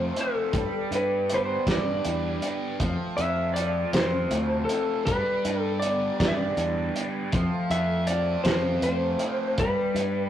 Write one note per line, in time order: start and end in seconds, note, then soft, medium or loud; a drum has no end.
0.00 0.10 F2 medium
0.00 0.16 F3 medium
0.00 0.51 A3 medium
0.00 0.52 A3 medium
0.00 0.15 C4 medium
0.00 0.52 C4 medium
0.00 0.51 F4 medium
0.00 0.53 F4 medium
0.00 0.51 A4 medium
0.00 0.18 C5 medium
0.00 0.51 C5 medium
0.16 0.53 C4 medium
0.16 closed hi-hat medium
0.21 0.96 A4 medium
0.52 0.70 G2 medium
0.52 2.77 G3 medium
0.52 2.04 G3 medium
0.52 2.77 B3 medium
0.52 2.77 D4 medium
0.52 2.77 G4 medium
0.52 2.77 B4 medium
0.52 kick loud
0.52 closed hi-hat medium
0.91 1.57 G2 medium
0.91 1.67 D4 medium
0.91 closed hi-hat medium
0.95 1.32 B4 medium
1.30 2.81 B3 medium
1.30 closed hi-hat medium
1.34 1.43 B4 medium
1.34 1.38 C5 medium
1.45 1.66 C5 medium
1.67 1.99 G2 medium
1.67 2.41 D4 medium
1.67 2.48 D5 medium
1.67 kick medium
1.67 snare loud
1.67 closed hi-hat medium
2.05 2.38 E2 medium
2.05 2.80 G3 medium
2.05 closed hi-hat medium
2.42 2.80 D4 medium
2.42 closed hi-hat soft
2.78 2.96 F2 loud
2.78 4.68 F3 medium
2.78 5.03 A3 medium
2.78 5.03 C4 medium
2.78 5.03 F4 medium
2.78 5.04 A4 medium
2.78 5.03 C5 medium
2.78 kick loud
2.78 closed hi-hat medium
3.17 3.83 F2 medium
3.17 3.92 C4 medium
3.17 3.56 E5 medium
3.17 closed hi-hat medium
3.54 5.07 F4 medium
3.54 3.93 D5 medium
3.54 closed hi-hat medium
3.93 4.26 F2 medium
3.93 4.68 C4 medium
3.93 4.71 C5 medium
3.93 snare loud
3.93 closed hi-hat medium
4.30 4.63 D2 medium
4.30 5.06 A3 medium
4.30 closed hi-hat medium
4.65 5.05 A4 medium
4.69 5.06 C4 medium
4.69 closed hi-hat medium
5.05 5.22 G2 loud
5.05 7.30 G3 medium
5.05 6.56 G3 medium
5.05 7.30 B3 medium
5.05 7.30 D4 medium
5.05 7.30 G4 medium
5.05 5.62 B4 medium
5.05 kick medium
5.05 closed hi-hat medium
5.45 6.10 G2 medium
5.45 6.19 D4 medium
5.45 closed hi-hat medium
5.62 5.83 A4 medium
5.80 7.32 B3 medium
5.80 6.19 D5 medium
5.80 closed hi-hat medium
6.20 6.52 G2 medium
6.20 6.95 D4 medium
6.20 6.26 D5 medium
6.20 kick medium
6.20 snare loud
6.20 closed hi-hat medium
6.28 6.34 E5 medium
6.35 7.00 D5 medium
6.57 6.89 E2 medium
6.57 7.32 G3 medium
6.57 closed hi-hat medium
6.96 7.33 D4 medium
6.96 closed hi-hat soft
7.32 7.49 F2 loud
7.32 9.21 F3 medium
7.32 9.56 A3 medium
7.32 9.56 C4 medium
7.32 9.56 F4 medium
7.32 9.56 A4 medium
7.32 9.56 C5 medium
7.32 kick loud
7.32 closed hi-hat medium
7.70 8.36 F2 medium
7.70 8.45 C4 medium
7.70 8.09 E5 medium
7.70 closed hi-hat medium
8.07 9.59 F4 medium
8.07 8.43 D5 medium
8.07 closed hi-hat medium
8.44 8.78 F2 medium
8.44 9.21 C4 medium
8.44 8.82 C5 medium
8.44 snare loud
8.44 closed hi-hat medium
8.82 9.15 F2 medium
8.82 9.59 A3 medium
8.82 9.59 C5 medium
8.82 closed hi-hat medium
9.19 9.59 C4 medium
9.19 closed hi-hat medium
9.58 9.75 G2 loud
9.58 10.29 G3 medium
9.58 10.29 B3 medium
9.58 10.29 D4 medium
9.58 10.29 G4 medium
9.58 10.29 B4 medium
9.58 kick loud
9.58 closed hi-hat medium
9.95 10.29 G2 medium
9.95 10.29 D4 medium
9.95 closed hi-hat medium